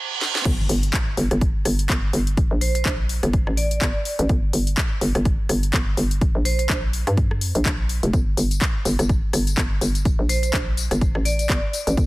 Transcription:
0.00 reverse cymbal medium
0.21 snare medium
0.35 snare medium
0.45 0.68 G1 loud
0.45 kick loud
0.45 closed hi-hat medium
0.45 crash loud
0.45 impact medium
0.69 0.92 G1 medium
0.69 open hi-hat loud
0.83 closed hi-hat medium
0.93 kick loud
0.93 clap loud
0.93 closed hi-hat medium
1.17 1.29 G1 loud
1.17 open hi-hat medium
1.31 1.64 G1 loud
1.31 cross-stick medium
1.31 closed hi-hat medium
1.41 kick loud
1.41 closed hi-hat medium
1.65 1.88 G1 loud
1.65 cross-stick medium
1.65 open hi-hat loud
1.79 closed hi-hat medium
1.89 2.12 G1 loud
1.89 kick loud
1.89 clap loud
1.89 closed hi-hat medium
2.13 2.49 G1 loud
2.13 open hi-hat medium
2.27 closed hi-hat medium
2.37 kick loud
2.37 closed hi-hat medium
2.51 2.84 A#1 medium
2.61 2.70 C5 medium
2.61 open hi-hat loud
2.75 2.82 C5 medium
2.75 closed hi-hat medium
2.85 3.21 A#1 loud
2.85 kick loud
2.85 clap loud
2.85 closed hi-hat medium
3.09 open hi-hat loud
3.23 3.45 G1 loud
3.23 cross-stick medium
3.23 closed hi-hat medium
3.33 kick loud
3.33 closed hi-hat soft
3.47 3.80 A1 medium
3.47 cross-stick medium
3.57 4.25 D5 medium
3.57 open hi-hat loud
3.71 closed hi-hat medium
3.81 3.93 G1 loud
3.81 kick loud
3.81 clap loud
3.81 closed hi-hat medium
4.05 open hi-hat loud
4.19 4.28 A1 loud
4.19 closed hi-hat medium
4.29 4.52 G1 loud
4.29 kick loud
4.29 closed hi-hat medium
4.53 4.76 G1 medium
4.53 open hi-hat loud
4.67 closed hi-hat medium
4.77 kick loud
4.77 clap loud
4.77 closed hi-hat medium
5.01 5.13 G1 loud
5.01 open hi-hat loud
5.15 5.48 G1 loud
5.15 cross-stick medium
5.15 closed hi-hat medium
5.25 kick loud
5.25 closed hi-hat medium
5.49 5.72 G1 loud
5.49 cross-stick medium
5.49 open hi-hat loud
5.63 closed hi-hat medium
5.73 5.96 G1 loud
5.73 kick loud
5.73 clap loud
5.73 closed hi-hat medium
5.97 6.33 G1 loud
5.97 open hi-hat loud
6.11 closed hi-hat medium
6.21 kick loud
6.21 closed hi-hat medium
6.35 6.68 A#1 loud
6.45 6.54 C5 medium
6.45 open hi-hat loud
6.59 6.66 C5 medium
6.59 closed hi-hat medium
6.69 7.05 A#1 loud
6.69 kick loud
6.69 clap loud
6.69 closed hi-hat medium
6.93 open hi-hat loud
7.07 7.53 G2 loud
7.07 cross-stick medium
7.07 closed hi-hat medium
7.17 kick loud
7.17 closed hi-hat soft
7.31 cross-stick medium
7.41 open hi-hat loud
7.55 7.64 A#1 medium
7.55 closed hi-hat medium
7.65 8.01 A#1 loud
7.65 kick loud
7.65 clap loud
7.65 closed hi-hat soft
7.89 open hi-hat medium
8.03 8.12 F1 loud
8.03 closed hi-hat medium
8.13 8.36 G1 loud
8.13 kick loud
8.13 closed hi-hat medium
8.13 tambourine soft
8.37 8.60 G1 loud
8.37 open hi-hat loud
8.37 tambourine medium
8.51 closed hi-hat medium
8.51 tambourine soft
8.61 kick loud
8.61 clap loud
8.61 closed hi-hat medium
8.61 tambourine soft
8.85 8.97 G1 loud
8.85 open hi-hat medium
8.85 tambourine medium
8.99 9.32 G1 loud
8.99 cross-stick medium
8.99 closed hi-hat medium
8.99 tambourine soft
9.09 kick loud
9.09 closed hi-hat soft
9.33 9.56 G1 loud
9.33 cross-stick medium
9.33 open hi-hat loud
9.33 tambourine medium
9.47 closed hi-hat medium
9.47 tambourine soft
9.57 9.80 G1 loud
9.57 kick loud
9.57 clap loud
9.57 closed hi-hat soft
9.57 tambourine soft
9.81 10.17 G1 loud
9.81 open hi-hat medium
9.81 tambourine medium
9.95 closed hi-hat medium
9.95 tambourine soft
10.05 kick loud
10.05 closed hi-hat medium
10.05 tambourine soft
10.19 10.52 A#1 loud
10.29 10.38 C5 medium
10.29 open hi-hat loud
10.29 tambourine medium
10.43 10.50 C5 medium
10.43 closed hi-hat medium
10.43 tambourine soft
10.53 10.89 A#1 medium
10.53 kick loud
10.53 clap loud
10.53 closed hi-hat medium
10.77 open hi-hat medium
10.77 tambourine medium
10.91 11.13 G1 loud
10.91 cross-stick medium
10.91 closed hi-hat medium
10.91 tambourine soft
11.01 kick loud
11.01 closed hi-hat soft
11.01 tambourine soft
11.15 11.48 A1 medium
11.15 cross-stick medium
11.25 11.93 D5 medium
11.25 open hi-hat loud
11.25 tambourine medium
11.39 closed hi-hat medium
11.39 tambourine soft
11.49 11.61 G1 loud
11.49 kick loud
11.49 clap loud
11.49 closed hi-hat medium
11.49 tambourine soft
11.73 open hi-hat medium
11.73 tambourine medium
11.87 11.96 A1 loud
11.87 closed hi-hat medium
11.87 tambourine soft
11.97 12.06 G1 loud
11.97 kick loud
11.97 closed hi-hat medium
11.97 tambourine soft

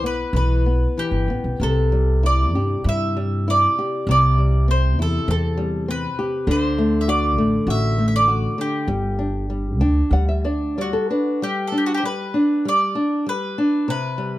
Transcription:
0.01 0.22 B1 medium
0.01 0.33 B3 soft
0.06 0.35 B4 medium
0.33 0.85 B1 medium
0.33 0.64 E3 soft
0.33 1.00 B4 medium
0.66 0.96 B3 soft
0.98 1.28 E3 soft
0.98 1.57 G4 medium
1.11 1.26 G1 medium
1.28 1.42 A1 medium
1.28 1.60 B3 soft
1.44 1.58 B1 medium
1.60 2.54 C2 medium
1.60 4.05 C3 medium
1.60 2.26 A4 medium
1.92 2.22 G3 soft
2.23 2.54 E4 soft
2.23 2.88 D5 medium
2.54 2.74 G2 medium
2.54 2.85 G4 soft
2.84 3.64 G2 medium
2.84 3.16 E4 soft
2.89 3.50 E5 medium
3.17 3.47 G3 medium
3.48 3.77 E4 medium
3.48 4.10 D5 medium
3.79 4.08 G4 soft
4.07 4.98 C2 loud
4.07 6.44 C3 medium
4.11 4.66 D5 medium
4.38 4.68 G3 soft
4.68 4.97 C4 medium
4.68 4.98 C5 medium
4.98 5.17 E2 medium
4.98 5.27 E4 medium
4.98 5.28 A4 medium
5.28 6.06 E2 loud
5.28 5.57 C4 medium
5.28 5.85 A4 medium
5.57 5.87 G3 medium
5.88 6.17 C4 medium
5.88 6.51 B4 medium
6.19 6.47 G4 medium
6.47 7.37 D2 medium
6.47 8.57 D3 medium
6.47 7.04 C5 medium
6.78 7.07 A3 medium
7.01 7.08 E5 medium
7.08 7.37 F#4 soft
7.08 7.70 D5 medium
7.37 7.57 A1 medium
7.37 7.67 A3 medium
7.67 8.45 A1 medium
7.67 7.97 F#4 soft
7.67 8.07 E5 medium
7.98 8.27 A3 medium
8.08 8.14 E5 medium
8.16 8.61 D5 medium
8.28 8.57 F#4 medium
8.58 8.87 D3 soft
8.58 10.75 G4 medium
8.88 9.79 G1 medium
8.88 9.49 G3 medium
9.19 9.48 D4 soft
9.50 9.79 G3 soft
9.79 10.00 D2 medium
9.79 10.11 D4 soft
9.79 10.10 G5 medium
10.11 10.95 D2 medium
10.11 10.43 G3 soft
10.11 10.27 F#5 medium
10.29 10.43 E5 medium
10.45 10.76 D4 soft
10.45 10.75 D5 medium
10.78 11.09 G3 soft
10.78 11.43 F#4 medium
10.78 10.93 D5 medium
10.93 11.08 A4 medium
11.10 11.40 D4 soft
11.10 11.39 B4 medium
11.42 12.02 G3 medium
11.42 11.68 G4 medium
11.67 11.76 A4 medium
11.72 12.02 D4 soft
11.78 11.85 G4 medium
11.86 11.94 F#4 medium
11.94 12.03 G4 medium
11.94 12.03 C5 medium
12.03 12.33 G3 soft
12.03 12.68 B4 medium
12.34 12.64 D4 soft
12.65 12.95 G3 medium
12.65 13.24 D5 medium
12.95 13.25 D4 soft
13.26 13.56 G3 medium
13.26 13.89 B4 medium
13.58 13.87 D4 soft
13.88 14.39 C3 medium
13.88 14.39 B4 medium
14.18 14.39 G3 medium

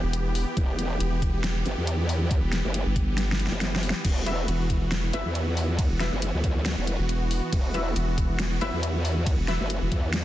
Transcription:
0.00 0.45 E1 loud
0.00 10.24 E3 medium
0.00 10.24 B3 medium
0.00 4.03 G4 medium
0.13 closed hi-hat medium
0.35 open hi-hat medium
0.57 0.99 E1 medium
0.57 kick loud
0.57 closed hi-hat medium
0.79 closed hi-hat medium
1.00 1.64 E1 loud
1.00 closed hi-hat medium
1.22 kick medium
1.22 closed hi-hat medium
1.44 snare loud
1.44 closed hi-hat medium
1.66 1.75 G1 loud
1.66 closed hi-hat medium
1.77 2.41 E2 loud
1.87 closed hi-hat medium
2.09 open hi-hat loud
2.31 kick loud
2.31 closed hi-hat medium
2.43 2.62 E1 loud
2.52 snare medium
2.52 closed hi-hat medium
2.64 2.84 F#1 medium
2.74 closed hi-hat medium
2.86 3.49 G1 loud
2.96 kick medium
2.96 closed hi-hat medium
3.18 snare medium
3.18 closed hi-hat medium
3.32 snare medium
3.39 closed hi-hat medium
3.47 snare medium
3.51 3.93 F#1 loud
3.61 snare medium
3.61 closed hi-hat medium
3.76 snare loud
3.83 open hi-hat loud
3.90 snare loud
4.05 4.47 E1 medium
4.05 10.24 F#4 medium
4.05 kick loud
4.05 closed hi-hat medium
4.05 crash medium
4.05 ride medium
4.26 4.45 E4 medium
4.26 4.45 B4 medium
4.26 4.45 E5 medium
4.26 closed hi-hat medium
4.48 5.12 E1 loud
4.48 closed hi-hat medium
4.48 ride soft
4.70 kick medium
4.70 closed hi-hat medium
4.92 snare loud
4.92 closed hi-hat medium
4.92 ride medium
5.13 5.23 G1 loud
5.13 5.98 E4 loud
5.13 5.98 B4 medium
5.13 5.98 E5 loud
5.13 closed hi-hat medium
5.25 5.88 E2 loud
5.35 closed hi-hat medium
5.35 ride soft
5.57 open hi-hat medium
5.79 kick loud
5.79 closed hi-hat medium
5.79 ride medium
5.90 6.10 E1 loud
6.00 6.19 E4 medium
6.00 6.19 B4 medium
6.00 6.19 E5 medium
6.00 snare medium
6.00 closed hi-hat medium
6.12 6.32 F#1 loud
6.22 closed hi-hat medium
6.22 ride soft
6.34 6.75 D2 loud
6.44 kick medium
6.44 closed hi-hat medium
6.66 snare loud
6.66 closed hi-hat medium
6.66 ride medium
6.77 6.97 E1 loud
6.87 closed hi-hat medium
6.99 7.41 E1 loud
7.09 closed hi-hat medium
7.09 ride soft
7.31 open hi-hat loud
7.53 7.94 E1 medium
7.53 kick loud
7.53 closed hi-hat medium
7.53 ride medium
7.74 7.93 E4 medium
7.74 7.93 B4 medium
7.74 7.93 E5 medium
7.74 closed hi-hat medium
7.96 8.60 E1 loud
7.96 closed hi-hat medium
7.96 ride soft
8.18 kick medium
8.18 closed hi-hat medium
8.39 snare loud
8.39 closed hi-hat medium
8.39 ride medium
8.61 8.71 G1 loud
8.61 9.46 E4 loud
8.61 9.46 B4 medium
8.61 9.46 E5 loud
8.61 closed hi-hat medium
8.73 9.36 E2 loud
8.83 closed hi-hat medium
8.83 ride soft
9.05 open hi-hat medium
9.26 kick loud
9.26 closed hi-hat medium
9.26 ride medium
9.38 9.58 E1 loud
9.48 9.67 E4 medium
9.48 9.67 B4 medium
9.48 9.67 E5 medium
9.48 snare medium
9.48 closed hi-hat medium
9.60 9.80 F#1 loud
9.70 closed hi-hat medium
9.70 ride soft
9.82 9.90 E1 loud
9.92 10.24 E2 loud
9.92 kick medium
9.92 closed hi-hat medium
10.13 snare loud
10.13 closed hi-hat medium
10.13 ride medium

